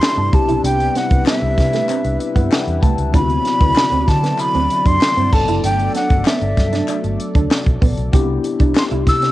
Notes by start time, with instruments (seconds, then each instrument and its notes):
Already playing: analog synth pad C3 B3 D4 E4, tine electric piano B3 D4 E4 G4, flute C6
0.02 snare, clap
0.17 fingered electric bass G2, clean electric guitar D4
0.32 fingered electric bass C2, analog synth pad G3 B4, tine electric piano B3 C4 D4 G4, flute A5, muted clean electric guitar stroke, kick, closed hi-hat
0.49 fingered electric bass B1, clean electric guitar E4, closed hi-hat
0.64 fingered electric bass C2, clean electric guitar D4, flute G5, closed hi-hat
0.80 closed hi-hat
0.95 clean electric guitar C4, flute F#5, snare, closed hi-hat
1.10 fingered electric bass C2, muted clean electric guitar stroke, kick, closed hi-hat
1.26 clean electric guitar B3, flute E5, snare, clap
1.42 fingered electric bass C2, muted clean electric guitar stroke
1.58 fingered electric bass C3, kick, snare, closed hi-hat
1.73 clean electric guitar A3, snare, closed hi-hat
1.89 clean electric guitar C4, clap, closed hi-hat
2.04 fingered electric bass C2, muted clean electric guitar stroke, closed hi-hat
2.20 tine electric piano E5, closed hi-hat
2.35 fingered electric bass G2, clean electric guitar B3, tine electric piano F#5, kick, closed hi-hat
2.50 tine electric piano G5, snare, clap
2.67 fingered electric bass E2, closed hi-hat
2.82 fingered electric bass C2, clean electric guitar A3, tine electric piano A5, kick, closed hi-hat
2.98 fingered electric bass C#2, closed hi-hat
3.12 fingered electric bass D2, analog synth pad C3 D3 F#3 D5, tine electric piano B3 C4 E4 F4, clean electric guitar D4, flute B5, kick, closed hi-hat
3.21 tine electric piano F#4
3.30 closed hi-hat
3.45 muted clean electric guitar stroke, snare, closed hi-hat
3.61 fingered electric bass D2, clean electric guitar B3, kick, closed hi-hat
3.75 snare, clap
3.92 fingered electric bass D2, clean electric guitar C4, closed hi-hat
4.08 fingered electric bass D3, flute A5, muted clean electric guitar stroke, kick, snare, closed hi-hat
4.23 clean electric guitar B3, snare, closed hi-hat
4.38 flute B5, clap, closed hi-hat
4.54 fingered electric bass D2, clean electric guitar C4, closed hi-hat
4.70 muted clean electric guitar stroke, closed hi-hat
4.86 fingered electric bass F#2, clean electric guitar D4, flute C6, kick, closed hi-hat
5.01 snare, clap
5.17 fingered electric bass G2, clean electric guitar C4, closed hi-hat
5.31 fingered electric bass G1, tine electric piano F#3 B3 D4 A4, analog synth pad A3 A4, flute A5, muted clean electric guitar stroke, kick, crash
5.48 fingered electric bass F#1, clean electric guitar E4, closed hi-hat
5.64 fingered electric bass G1, clean electric guitar D4, flute G5, closed hi-hat
5.79 closed hi-hat
5.95 clean electric guitar D4, flute F#5, snare, closed hi-hat
6.10 fingered electric bass G1, muted clean electric guitar stroke, kick, closed hi-hat
6.25 clean electric guitar B3, flute E5, snare, clap
6.41 fingered electric bass G1, muted clean electric guitar stroke, closed hi-hat
6.57 fingered electric bass G2, kick, snare, closed hi-hat
6.73 clean electric guitar D4, snare, closed hi-hat
6.88 clean electric guitar D4, clap, closed hi-hat
7.04 fingered electric bass G1, muted clean electric guitar stroke, closed hi-hat
7.20 closed hi-hat
7.35 fingered electric bass D2, clean electric guitar D4, kick, closed hi-hat
7.51 snare, clap
7.66 fingered electric bass B1, kick, closed hi-hat
7.82 fingered electric bass A#1, clean electric guitar B3, kick, open hi-hat
7.97 fingered electric bass B1, closed hi-hat
8.12 fingered electric bass C2, analog synth pad C3 D4 E4, tine electric piano B3 D4 E4 G4, clean electric guitar C4, kick, closed hi-hat
8.44 muted clean electric guitar stroke, closed hi-hat
8.60 fingered electric bass C2, clean electric guitar D4, kick, closed hi-hat
8.75 flute C6, snare, clap
8.91 fingered electric bass C2, clean electric guitar E4, closed hi-hat
9.07 fingered electric bass C3, flute E6, muted clean electric guitar stroke, kick, snare, closed hi-hat
9.22 clean electric guitar C4, snare, closed hi-hat